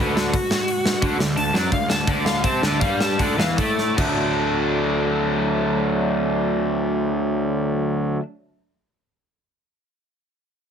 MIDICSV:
0, 0, Header, 1, 5, 480
1, 0, Start_track
1, 0, Key_signature, 2, "major"
1, 0, Tempo, 348028
1, 1422, Time_signature, 4, 2, 24, 8
1, 2871, Tempo, 373599
1, 4791, Tempo, 406780
1, 13203, End_track
2, 0, Start_track
2, 0, Title_t, "Lead electric guitar"
2, 0, Program_c, 0, 29
2, 0, Note_on_c, 0, 66, 67
2, 8, Note_on_c, 0, 71, 68
2, 203, Note_off_c, 0, 66, 0
2, 219, Note_on_c, 0, 66, 96
2, 228, Note_off_c, 0, 71, 0
2, 1612, Note_off_c, 0, 66, 0
2, 1887, Note_on_c, 0, 81, 109
2, 2127, Note_off_c, 0, 81, 0
2, 2140, Note_on_c, 0, 74, 89
2, 2374, Note_off_c, 0, 74, 0
2, 2382, Note_on_c, 0, 77, 87
2, 2618, Note_off_c, 0, 77, 0
2, 2618, Note_on_c, 0, 81, 94
2, 2859, Note_off_c, 0, 81, 0
2, 2878, Note_on_c, 0, 74, 75
2, 3092, Note_off_c, 0, 74, 0
2, 3097, Note_on_c, 0, 77, 81
2, 3325, Note_off_c, 0, 77, 0
2, 3325, Note_on_c, 0, 81, 106
2, 3557, Note_off_c, 0, 81, 0
2, 3577, Note_on_c, 0, 74, 88
2, 3793, Note_off_c, 0, 74, 0
2, 3798, Note_on_c, 0, 77, 86
2, 4036, Note_off_c, 0, 77, 0
2, 4062, Note_on_c, 0, 81, 93
2, 4292, Note_off_c, 0, 81, 0
2, 4311, Note_on_c, 0, 74, 81
2, 4541, Note_off_c, 0, 74, 0
2, 4563, Note_on_c, 0, 77, 85
2, 4783, Note_off_c, 0, 77, 0
2, 4788, Note_on_c, 0, 74, 88
2, 5247, Note_off_c, 0, 74, 0
2, 13203, End_track
3, 0, Start_track
3, 0, Title_t, "Overdriven electric guitar"
3, 0, Program_c, 1, 29
3, 0, Note_on_c, 1, 50, 110
3, 465, Note_off_c, 1, 50, 0
3, 1416, Note_on_c, 1, 50, 100
3, 1634, Note_off_c, 1, 50, 0
3, 1651, Note_on_c, 1, 50, 65
3, 1847, Note_off_c, 1, 50, 0
3, 1888, Note_on_c, 1, 50, 76
3, 2086, Note_off_c, 1, 50, 0
3, 2124, Note_on_c, 1, 54, 91
3, 2367, Note_off_c, 1, 54, 0
3, 2377, Note_on_c, 1, 50, 70
3, 2574, Note_off_c, 1, 50, 0
3, 2609, Note_on_c, 1, 50, 64
3, 2813, Note_off_c, 1, 50, 0
3, 2864, Note_on_c, 1, 50, 94
3, 3324, Note_off_c, 1, 50, 0
3, 3326, Note_on_c, 1, 60, 93
3, 3558, Note_off_c, 1, 60, 0
3, 3562, Note_on_c, 1, 50, 84
3, 3792, Note_on_c, 1, 55, 106
3, 3796, Note_off_c, 1, 50, 0
3, 4277, Note_off_c, 1, 55, 0
3, 4290, Note_on_c, 1, 50, 104
3, 4531, Note_off_c, 1, 50, 0
3, 4538, Note_on_c, 1, 52, 93
3, 4782, Note_off_c, 1, 52, 0
3, 4788, Note_on_c, 1, 57, 90
3, 5244, Note_on_c, 1, 50, 86
3, 5254, Note_off_c, 1, 57, 0
3, 5260, Note_on_c, 1, 54, 94
3, 5275, Note_on_c, 1, 57, 86
3, 5292, Note_on_c, 1, 62, 102
3, 10229, Note_off_c, 1, 50, 0
3, 10245, Note_off_c, 1, 54, 0
3, 10260, Note_off_c, 1, 57, 0
3, 10277, Note_off_c, 1, 62, 0
3, 13203, End_track
4, 0, Start_track
4, 0, Title_t, "Picked electric bass"
4, 0, Program_c, 2, 34
4, 0, Note_on_c, 2, 38, 89
4, 433, Note_off_c, 2, 38, 0
4, 1412, Note_on_c, 2, 38, 98
4, 1631, Note_off_c, 2, 38, 0
4, 1639, Note_on_c, 2, 38, 71
4, 1872, Note_off_c, 2, 38, 0
4, 1901, Note_on_c, 2, 38, 75
4, 2116, Note_off_c, 2, 38, 0
4, 2124, Note_on_c, 2, 42, 92
4, 2356, Note_off_c, 2, 42, 0
4, 2372, Note_on_c, 2, 38, 67
4, 2586, Note_off_c, 2, 38, 0
4, 2595, Note_on_c, 2, 38, 78
4, 2837, Note_off_c, 2, 38, 0
4, 2861, Note_on_c, 2, 38, 90
4, 3297, Note_off_c, 2, 38, 0
4, 3337, Note_on_c, 2, 48, 90
4, 3554, Note_off_c, 2, 48, 0
4, 3570, Note_on_c, 2, 38, 88
4, 3791, Note_off_c, 2, 38, 0
4, 3807, Note_on_c, 2, 43, 80
4, 4257, Note_off_c, 2, 43, 0
4, 4302, Note_on_c, 2, 38, 89
4, 4527, Note_off_c, 2, 38, 0
4, 4537, Note_on_c, 2, 40, 91
4, 4771, Note_off_c, 2, 40, 0
4, 4798, Note_on_c, 2, 45, 92
4, 5234, Note_off_c, 2, 45, 0
4, 5268, Note_on_c, 2, 38, 86
4, 10205, Note_off_c, 2, 38, 0
4, 13203, End_track
5, 0, Start_track
5, 0, Title_t, "Drums"
5, 234, Note_on_c, 9, 38, 103
5, 372, Note_off_c, 9, 38, 0
5, 463, Note_on_c, 9, 36, 95
5, 464, Note_on_c, 9, 46, 54
5, 601, Note_off_c, 9, 36, 0
5, 602, Note_off_c, 9, 46, 0
5, 701, Note_on_c, 9, 38, 121
5, 839, Note_off_c, 9, 38, 0
5, 938, Note_on_c, 9, 46, 57
5, 1076, Note_off_c, 9, 46, 0
5, 1180, Note_on_c, 9, 38, 105
5, 1318, Note_off_c, 9, 38, 0
5, 1409, Note_on_c, 9, 46, 52
5, 1412, Note_on_c, 9, 36, 95
5, 1547, Note_off_c, 9, 46, 0
5, 1550, Note_off_c, 9, 36, 0
5, 1660, Note_on_c, 9, 38, 105
5, 1798, Note_off_c, 9, 38, 0
5, 1896, Note_on_c, 9, 46, 54
5, 2034, Note_off_c, 9, 46, 0
5, 2140, Note_on_c, 9, 38, 107
5, 2278, Note_off_c, 9, 38, 0
5, 2372, Note_on_c, 9, 36, 83
5, 2373, Note_on_c, 9, 46, 47
5, 2510, Note_off_c, 9, 36, 0
5, 2511, Note_off_c, 9, 46, 0
5, 2617, Note_on_c, 9, 38, 110
5, 2755, Note_off_c, 9, 38, 0
5, 2861, Note_on_c, 9, 36, 89
5, 2862, Note_on_c, 9, 46, 49
5, 2991, Note_off_c, 9, 36, 0
5, 2991, Note_off_c, 9, 46, 0
5, 3101, Note_on_c, 9, 38, 104
5, 3230, Note_off_c, 9, 38, 0
5, 3331, Note_on_c, 9, 36, 94
5, 3335, Note_on_c, 9, 46, 53
5, 3459, Note_off_c, 9, 36, 0
5, 3463, Note_off_c, 9, 46, 0
5, 3579, Note_on_c, 9, 38, 93
5, 3708, Note_off_c, 9, 38, 0
5, 3811, Note_on_c, 9, 36, 113
5, 3820, Note_on_c, 9, 46, 61
5, 3940, Note_off_c, 9, 36, 0
5, 3948, Note_off_c, 9, 46, 0
5, 4058, Note_on_c, 9, 38, 107
5, 4186, Note_off_c, 9, 38, 0
5, 4300, Note_on_c, 9, 36, 85
5, 4308, Note_on_c, 9, 46, 53
5, 4428, Note_off_c, 9, 36, 0
5, 4437, Note_off_c, 9, 46, 0
5, 4560, Note_on_c, 9, 38, 108
5, 4688, Note_off_c, 9, 38, 0
5, 4797, Note_on_c, 9, 36, 91
5, 4805, Note_on_c, 9, 46, 57
5, 4915, Note_off_c, 9, 36, 0
5, 4923, Note_off_c, 9, 46, 0
5, 5036, Note_on_c, 9, 38, 49
5, 5154, Note_off_c, 9, 38, 0
5, 5267, Note_on_c, 9, 49, 76
5, 5268, Note_on_c, 9, 36, 97
5, 5385, Note_off_c, 9, 49, 0
5, 5386, Note_off_c, 9, 36, 0
5, 13203, End_track
0, 0, End_of_file